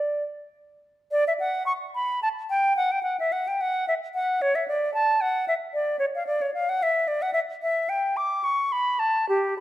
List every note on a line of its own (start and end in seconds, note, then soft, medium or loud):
0.00 0.23 D5 medium
1.12 1.24 D5 medium
1.27 1.33 E5 medium
1.40 1.65 F#5 medium
1.66 1.72 C#6 medium
1.95 2.22 B5 medium
2.23 2.29 A5 medium
2.50 2.76 G5 medium
2.77 2.93 F#5 medium
2.92 3.02 G5 medium
3.03 3.17 F#5 medium
3.20 3.34 E5 medium
3.32 3.49 F#5 medium
3.48 3.62 G5 medium
3.61 3.87 F#5 medium
3.88 3.94 E5 medium
4.14 4.43 F#5 medium
4.42 4.57 C#5 medium
4.55 4.67 E5 medium
4.68 4.94 D5 medium
4.94 5.23 A5 medium
5.21 5.48 F#5 medium
5.48 5.54 E5 medium
5.74 5.99 D5 medium
5.99 6.05 C#5 medium
6.15 6.26 F5 medium
6.27 6.43 D5 medium
6.41 6.53 C#5 medium
6.54 6.71 F5 medium
6.69 6.84 F#5 medium
6.83 7.09 E5 medium
7.08 7.24 D5 medium
7.22 7.33 F#5 medium
7.33 7.40 E5 medium
7.62 7.91 E5 medium
7.89 8.18 G5 medium
8.17 8.45 D6 medium
8.44 8.74 C#6 medium
8.72 9.01 B5 medium
8.99 9.28 A5 medium
9.29 9.57 G4 medium